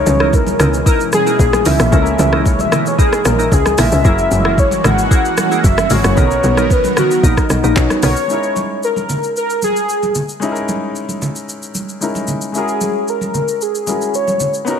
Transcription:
Already playing: B2 E3 G#3 C#4 D#4 E4 A#4 C#5
0.06 C#2, high conga, shaker
0.20 D#4 E4 A#4, cross-stick
0.33 A#4, kick, shaker
0.47 high conga, shaker
0.59 C#2 D#4 E4 A#4, cross-stick, low conga, shaker
0.74 shaker
0.86 D#4 E4 A#4, kick, shaker
1.00 shaker
1.12 G#4, cross-stick, high conga, shaker
1.26 D#4 E4 A#4, shaker
1.39 A#1, kick, shaker
1.53 cross-stick, high conga, shaker
1.65 C#2 D#4 E4 A#4 E5, open hi-hat, high conga, low conga, shaker
1.79 A#1, cross-stick, shaker
1.90 C#2 G#3 A#3 C#4 E4 A#4, kick, shaker
1.94 E4 A4
2.02 A#4, shaker
2.19 C#2, high conga, shaker
2.32 D#4 E4 A#4, cross-stick
2.46 C#5, kick, shaker
2.59 E5, high conga, shaker
2.72 D#4 E4 A#4, cross-stick, low conga, shaker
2.86 C#5, shaker
2.98 D#4 E4 G#4 A#4, kick, shaker
3.13 cross-stick, shaker
3.25 A#1 A#4, cross-stick, high conga, shaker
3.39 D#4 E4 A#4, shaker
3.52 C#2 G#4, kick, shaker
3.66 cross-stick, high conga, shaker
3.78 A#1 D#4 E4 A#4 E5, cross-stick, open hi-hat, high conga, low conga, shaker
3.92 C#2, shaker
4.03 F#1 E3 G#3 A#3 C#4 E4 F#4 G#4 A#4, kick, shaker
4.07 F#4 A#4
4.18 shaker
4.31 F#1, high conga, shaker
4.45 E4 G#4 A#4, cross-stick
4.58 C#5, kick, shaker
4.71 high conga, shaker
4.84 G#1 E4 G#4 A#4 F#5, cross-stick, low conga, shaker
4.98 shaker
5.11 E4 G#4 A#4, kick, shaker
5.25 shaker
5.37 cross-stick, high conga, shaker
5.51 E4 G#4 A#4, shaker
5.64 F#1 E5, kick, shaker
5.78 cross-stick, high conga, shaker
5.90 G#1 G#3 C#4 E4 F#4 G#4 A#4 C#5, open hi-hat, high conga, low conga, shaker
6.04 F#1, cross-stick, shaker
6.15 B1 D#3 F#3 B3 C#4 D#4 A#4, kick, low conga, shaker
6.19 F#4 A4
6.27 A#4, shaker
6.44 B1, high conga, shaker
6.57 B3 D#4 A#4, cross-stick, shaker
6.70 B4, kick, shaker
6.84 high conga, shaker
6.97 B3 D#4 F#4 A#4, cross-stick, low conga, shaker
7.11 shaker
7.23 A#1 B3 D#4 A#4, kick, shaker
7.37 kick, cross-stick, shaker
7.50 B1, cross-stick, high conga, shaker
7.64 A#1 B3 D#4 A#4, shaker
7.76 B1 B3 C#4 D#4 F#4 C#5, kick, clap, shaker
7.90 cross-stick, high conga, shaker
8.03 B1 B3 D#4 A#4 C#5, cross-stick, open hi-hat, high conga, low conga, shaker
8.16 shaker
8.28 G#3 C#4 D#4, shaker
8.32 E4 A#4
8.43 shaker
8.56 high conga, shaker
8.83 A#4, shaker
8.96 high conga, shaker
9.09 low conga, shaker
9.23 shaker
9.36 A#4, shaker
9.50 shaker
9.62 G#4, high conga, shaker
9.76 shaker
9.89 shaker
10.03 high conga, shaker
10.15 high conga, low conga, shaker
10.29 shaker
10.40 G#3 C#4 D#4, shaker
10.44 E4 G#4
10.52 A#4
10.56 shaker
10.68 high conga, shaker
10.95 shaker
11.09 high conga, shaker
11.22 low conga, shaker
11.36 shaker
11.49 shaker
11.63 shaker
11.75 high conga, shaker
11.89 shaker
12.01 G#3 C#4 D#4 E4 A#4, shaker
12.15 high conga, shaker
12.27 high conga, low conga, shaker
12.41 shaker
12.52 G#3 C#4 E4 G#4, shaker
12.56 F#4 A#4
12.68 shaker
12.81 high conga, shaker
13.08 A#4, shaker
13.21 high conga, shaker
13.34 low conga, shaker
13.48 shaker
13.61 G#4, shaker
13.75 shaker
13.86 G#3 C#4 E4 F#4 A#4, high conga, shaker
14.01 shaker
14.14 C#5, shaker
14.28 high conga, shaker
14.40 high conga, low conga, shaker
14.54 shaker
14.65 B3 C#4 D#4, shaker
14.69 F#4 A#4

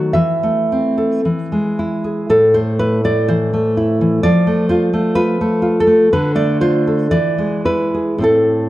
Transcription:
Already playing: D#3 F#3 A3 F#4 C5
0.13 E3 E5
0.43 A3
0.72 C4
0.98 A4
1.25 E3
1.52 G#3
1.79 E4
2.04 G#4
2.30 A2 A4
2.54 A3 C5
2.79 E4 B4
3.04 A3 D5
3.28 E3 C5
3.54 A3
3.77 E4
4.01 E3
4.23 F3 D5
4.47 A3
4.69 F4 C5
4.93 A3
5.15 F4 B4
5.41 A3
5.62 F4
5.80 A4
5.87 A3
6.13 D3 B4
6.35 A3 D5
6.61 F4 C5
6.87 A4
7.11 E3 D5
7.38 G#3
7.65 E4 B4
7.94 G#4
8.18 A2 C4 E4
8.24 A4

